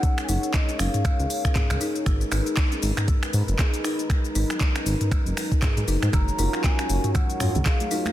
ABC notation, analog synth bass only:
X:1
M:4/4
L:1/16
Q:"Swing 16ths" 1/4=118
K:G#dor
V:1 name="Analog synth bass" clef=bass
z2 F,,, z3 F,,, z2 C,, z3 C,, z2 | G,,, z G,,, z3 G,,, z3 G,, F,,, z4 | z2 G,,, z3 G,,, z2 F,,, z3 G,, F,,, G,, | F,,, z F,,, z3 F,,, z3 F,, C,, z4 |]